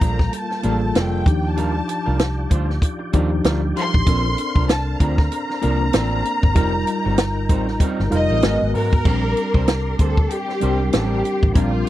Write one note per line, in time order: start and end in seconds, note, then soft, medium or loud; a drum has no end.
0.00 0.29 A#1 medium
0.00 0.18 F3 medium
0.00 0.63 G3 medium
0.00 0.64 A#3 medium
0.00 1.23 A#3 medium
0.00 0.19 A#3 medium
0.00 0.19 D4 medium
0.00 0.64 F4 medium
0.00 4.02 F4 medium
0.00 0.72 A4 medium
0.00 0.19 A#4 medium
0.00 1.24 G5 medium
0.00 0.34 A#5 medium
0.00 kick medium
0.00 closed hi-hat medium
0.19 muted clean electric guitar stroke soft
0.19 kick medium
0.19 snare soft
0.32 muted clean electric guitar stroke soft
0.32 closed hi-hat medium
0.36 0.96 A5 medium
0.50 muted clean electric guitar stroke soft
0.50 snare soft
0.63 0.91 A1 medium
0.63 0.84 F3 medium
0.63 1.26 G3 medium
0.63 1.26 A#3 medium
0.63 0.81 A#3 medium
0.63 0.81 D4 medium
0.63 1.26 F4 medium
0.63 0.72 G#4 medium
0.63 0.81 A#4 medium
0.63 closed hi-hat medium
0.72 1.30 A4 medium
0.81 muted clean electric guitar stroke soft
0.95 1.22 F1 medium
0.95 1.24 F3 medium
0.95 1.24 A#3 medium
0.95 1.24 D4 medium
0.95 1.24 A4 medium
0.95 1.46 G5 medium
0.95 snare loud
0.95 closed hi-hat medium
1.26 1.80 D#2 medium
1.26 2.26 F3 medium
1.26 2.27 D4 medium
1.26 2.27 D#4 medium
1.26 2.28 G4 medium
1.26 4.04 D5 medium
1.26 4.03 G5 medium
1.26 muted clean electric guitar stroke soft
1.26 kick loud
1.26 closed hi-hat medium
1.44 muted clean electric guitar stroke soft
1.48 2.70 A5 medium
1.57 1.77 G3 medium
1.57 1.74 D4 medium
1.57 1.74 F4 medium
1.57 1.74 A#4 medium
1.57 closed hi-hat medium
1.75 muted clean electric guitar stroke soft
1.87 muted clean electric guitar stroke soft
1.87 closed hi-hat medium
2.06 2.45 C2 medium
2.06 2.17 G3 soft
2.06 2.18 D4 soft
2.06 2.19 F4 soft
2.06 2.18 A#4 medium
2.18 muted clean electric guitar stroke soft
2.18 snare loud
2.18 closed hi-hat medium
2.50 2.78 D2 medium
2.50 2.67 G3 medium
2.50 2.67 D4 medium
2.50 2.67 F4 medium
2.50 2.67 C5 medium
2.50 kick medium
2.50 closed hi-hat medium
2.68 muted clean electric guitar stroke soft
2.68 snare soft
2.82 kick medium
2.82 closed hi-hat medium
2.99 muted clean electric guitar stroke soft
3.13 3.41 D#2 medium
3.13 3.81 F3 medium
3.13 3.34 G3 medium
3.13 3.31 D4 medium
3.13 3.81 D4 medium
3.13 3.81 D#4 medium
3.13 3.31 F4 medium
3.13 3.82 G4 loud
3.13 3.30 A#4 medium
3.13 kick medium
3.13 closed hi-hat medium
3.32 muted clean electric guitar stroke soft
3.44 3.71 D2 medium
3.44 3.65 G3 medium
3.44 3.62 D4 medium
3.44 3.62 F4 medium
3.44 3.61 A#4 medium
3.44 snare loud
3.44 closed hi-hat medium
3.62 muted clean electric guitar stroke soft
3.76 3.92 G3 medium
3.76 3.93 D4 medium
3.76 3.92 F4 medium
3.76 3.92 A#4 medium
3.76 4.66 C6 loud
3.76 closed hi-hat medium
3.93 4.06 A1 medium
3.93 muted clean electric guitar stroke soft
3.93 kick medium
4.06 4.34 A#1 loud
4.06 4.27 F3 medium
4.06 4.97 C4 medium
4.06 4.25 C4 medium
4.06 4.97 D4 medium
4.06 4.25 D4 medium
4.06 6.54 D4 medium
4.06 4.96 A4 medium
4.06 4.24 A4 medium
4.06 4.97 A#4 medium
4.06 6.54 C5 medium
4.06 6.54 F5 medium
4.06 kick loud
4.06 closed hi-hat medium
4.25 muted clean electric guitar stroke soft
4.38 muted clean electric guitar stroke soft
4.38 closed hi-hat medium
4.56 4.94 C2 medium
4.56 4.68 F3 soft
4.56 4.69 C4 soft
4.56 4.68 D4 medium
4.56 4.68 A#4 medium
4.56 kick medium
4.69 5.01 A5 loud
4.69 muted clean electric guitar stroke soft
4.69 snare loud
4.69 closed hi-hat loud
5.00 5.27 D2 medium
5.00 5.17 F3 medium
5.00 5.17 C4 medium
5.00 5.17 D4 medium
5.00 5.17 A#4 medium
5.00 8.44 A#5 loud
5.00 kick medium
5.00 closed hi-hat medium
5.18 muted clean electric guitar stroke soft
5.18 kick medium
5.18 snare soft
5.31 muted clean electric guitar stroke soft
5.31 closed hi-hat medium
5.49 muted clean electric guitar stroke soft
5.49 snare soft
5.62 5.90 C2 medium
5.62 5.83 F3 medium
5.62 6.30 A#3 medium
5.62 6.30 C4 medium
5.62 5.80 C4 medium
5.62 6.30 D4 medium
5.62 5.80 D4 medium
5.62 5.80 A#4 medium
5.62 6.31 A#4 medium
5.62 closed hi-hat medium
5.81 muted clean electric guitar stroke soft
5.93 6.21 A1 medium
5.93 6.22 F3 medium
5.93 6.23 C4 medium
5.93 6.23 D4 medium
5.93 6.23 A4 medium
5.93 snare loud
5.93 closed hi-hat medium
6.25 muted clean electric guitar stroke soft
6.25 closed hi-hat medium
6.43 6.56 G1 medium
6.43 muted clean electric guitar stroke soft
6.43 kick loud
6.55 6.83 F1 loud
6.55 6.76 G3 medium
6.55 7.46 G3 medium
6.55 6.73 C4 medium
6.55 7.46 D#4 medium
6.55 6.73 D#4 medium
6.55 8.41 D#4 medium
6.55 7.46 F4 medium
6.55 6.72 A#4 medium
6.55 9.03 A#4 medium
6.55 7.46 A#4 medium
6.55 8.41 G5 medium
6.55 kick loud
6.55 closed hi-hat medium
6.73 muted clean electric guitar stroke soft
6.87 muted clean electric guitar stroke soft
6.87 closed hi-hat medium
7.05 7.50 G1 medium
7.05 7.16 G3 soft
7.05 7.17 C4 soft
7.05 7.17 D#4 soft
7.05 7.17 A#4 medium
7.18 muted clean electric guitar stroke soft
7.18 snare loud
7.18 closed hi-hat loud
7.49 7.77 A1 medium
7.49 7.66 G3 medium
7.49 7.67 C4 medium
7.49 7.67 D#4 medium
7.49 7.67 C5 medium
7.49 kick medium
7.49 closed hi-hat medium
7.68 muted clean electric guitar stroke soft
7.68 snare soft
7.80 8.01 G3 medium
7.80 8.02 C4 medium
7.80 8.02 D#4 medium
7.80 8.02 A#4 medium
7.80 kick medium
7.80 closed hi-hat medium
7.99 8.11 G1 medium
7.99 snare soft
8.10 8.28 F1 medium
8.10 8.42 G3 medium
8.10 8.43 D#4 medium
8.10 8.43 F4 medium
8.10 8.42 A#4 medium
8.10 8.41 F5 medium
8.10 muted clean electric guitar stroke soft
8.10 closed hi-hat medium
8.14 8.71 D#5 loud
8.30 8.41 A1 medium
8.30 8.43 G3 soft
8.30 8.43 C4 medium
8.30 8.43 D#4 soft
8.30 8.43 A#4 soft
8.41 8.59 G#1 medium
8.41 8.64 F#3 medium
8.41 8.94 G#3 medium
8.41 8.94 B3 medium
8.41 9.05 B3 medium
8.41 8.61 B3 medium
8.41 8.61 D#4 medium
8.41 8.95 F#4 medium
8.41 8.95 A#4 medium
8.41 8.60 A#4 medium
8.41 8.72 G#5 medium
8.41 snare loud
8.41 closed hi-hat medium
8.62 8.73 G#1 medium
8.62 muted clean electric guitar stroke soft
8.74 9.02 G#2 medium
8.74 8.91 F#3 medium
8.74 8.92 B3 medium
8.74 8.92 D#4 medium
8.74 8.92 A#4 medium
8.74 9.96 A#4 loud
8.74 9.03 A#5 medium
8.74 open hi-hat medium
8.93 muted clean electric guitar stroke soft
8.93 kick medium
9.04 9.33 A#1 loud
9.04 9.95 G3 medium
9.04 9.27 G3 medium
9.04 9.96 C4 medium
9.04 9.24 C4 medium
9.04 9.96 D4 medium
9.04 9.23 D4 medium
9.04 11.89 G4 medium
9.04 9.96 A#4 medium
9.04 9.23 A#4 medium
9.04 11.89 D5 medium
9.04 11.52 C6 medium
9.04 kick loud
9.04 crash medium
9.24 muted clean electric guitar stroke soft
9.37 muted clean electric guitar stroke soft
9.37 closed hi-hat medium
9.54 9.93 C2 medium
9.54 9.67 G3 soft
9.54 9.68 C4 soft
9.54 9.68 D4 soft
9.54 9.67 C5 medium
9.54 kick medium
9.68 muted clean electric guitar stroke soft
9.68 snare loud
9.68 closed hi-hat medium
9.99 10.26 D2 medium
9.99 10.16 G3 medium
9.99 10.17 C4 medium
9.99 10.17 D4 medium
9.99 10.29 A4 medium
9.99 10.17 C5 medium
9.99 kick medium
9.99 closed hi-hat medium
10.17 muted clean electric guitar stroke soft
10.17 kick medium
10.30 10.93 G4 medium
10.30 muted clean electric guitar stroke soft
10.30 closed hi-hat medium
10.48 muted clean electric guitar stroke soft
10.48 snare soft
10.61 10.89 C2 medium
10.61 11.29 G3 medium
10.61 10.82 G3 medium
10.61 11.29 C4 medium
10.61 10.80 C4 medium
10.61 11.30 D4 medium
10.61 10.79 D4 medium
10.61 11.30 A#4 medium
10.61 10.79 C5 medium
10.61 closed hi-hat medium
10.80 muted clean electric guitar stroke soft
10.93 11.21 A1 medium
10.93 11.05 F#3 medium
10.93 11.06 B3 medium
10.93 11.06 C#4 medium
10.93 11.46 G4 medium
10.93 11.07 A4 medium
10.93 snare loud
10.93 closed hi-hat medium
11.05 11.22 G3 medium
11.05 11.22 C4 medium
11.05 11.22 D4 medium
11.05 11.23 A#4 medium
11.24 muted clean electric guitar stroke soft
11.24 closed hi-hat medium
11.43 11.54 A1 medium
11.43 muted clean electric guitar stroke soft
11.43 kick medium
11.53 11.82 A#1 loud
11.53 11.89 G3 medium
11.53 11.76 G3 medium
11.53 11.73 C4 medium
11.53 11.89 C4 medium
11.53 11.89 D4 medium
11.53 11.72 D4 medium
11.53 11.57 E4 medium
11.53 11.89 F4 medium
11.53 11.72 A#4 medium
11.53 11.89 G5 medium
11.53 kick loud
11.53 closed hi-hat medium
11.57 11.89 A#4 medium
11.73 muted clean electric guitar stroke soft